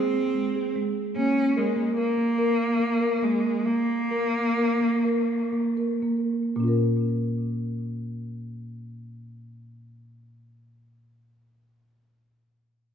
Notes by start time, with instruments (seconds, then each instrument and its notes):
Already playing: marimba A#3 G#4, cello C4
0.35 marimba G#3
0.56 marimba G#4
0.76 marimba G#3
1.16 marimba A#3, cello C#4
1.56 cello G#3, marimba A#4
1.76 marimba A#3
1.97 cello A#3, marimba A#4
2.18 marimba A#3
2.38 marimba A#4
2.79 marimba A#3
3.01 marimba A#4
3.22 cello G#3, marimba A#3
3.66 cello A#3, marimba A#3
4.11 marimba A#4
4.34 marimba A#3
4.58 marimba A#4
4.81 marimba A#3
5.05 marimba A#4
5.53 marimba A#3
5.77 marimba A#4
6.03 marimba A#3
6.56 marimba A#2 A#3 C#4
6.64 marimba F4
6.68 marimba A#4